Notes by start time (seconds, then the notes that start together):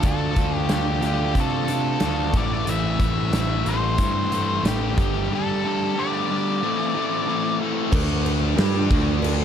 0.02 D2 D3 A3 D4 F4, kick, closed hi-hat
0.07 A4
0.33 D2 D3 A3 D4 F4, kick, closed hi-hat
0.58 G4
0.67 D2 D3 A3 D4 F4, snare, closed hi-hat
0.74 G4
1.01 D2 D3 A3 D4 F4, closed hi-hat
1.07 G4
1.34 C3 D3 A3 D4 F4, kick, closed hi-hat
1.40 A4
1.68 D3 A3 D4 F4, closed hi-hat
2.00 D2 D3 A3 D4 F4, snare, closed hi-hat
2.33 A1 A2 E3 A3 C4 E4, kick, closed hi-hat
2.37 D5
2.66 A1 A2 E3 A3 C4 E4 E5, closed hi-hat
2.99 A1 A2 E3 A3 C4 E4, kick, closed hi-hat
3.32 A1 A2 E3 A3 C4, snare, closed hi-hat
3.36 E4
3.65 A1 A2 E3 A3 C4 E4 C5, closed hi-hat
3.98 G2 A2 E3 A3 C4 E4, kick, closed hi-hat
4.31 A2 E3 A3 C4 E4, closed hi-hat
4.63 A1 A2 E3 A3 C4 E4, snare, closed hi-hat
4.68 G4
4.96 G1 G2 D3 G3 A3 D4 G4, kick, closed hi-hat
5.31 G2 D3 G3 A3 D4 G4
5.35 A4
5.62 G2 G3 A3 D4 G4
5.66 D3 G3
5.96 G2 D3 G3 A3 D4 G4 D5
6.30 G2 D3 G3 A3 D4 G4
6.61 A2 E3 A3 C4 E4 A4
6.94 A2 E3 A3 C4 E4 A4
7.26 A2 E3 A3 C4 E4 A4
7.59 A2 E3 C4 E4 A4
7.63 A3
7.91 D2 D3 A3 D4 F4 D5, kick, crash, cowbell
8.25 cowbell, crash
8.56 G2 G3 D4 G4, snare, cowbell, crash
8.60 G3
8.90 D2 D3 A3 D4, kick, crash
9.22 cowbell, crash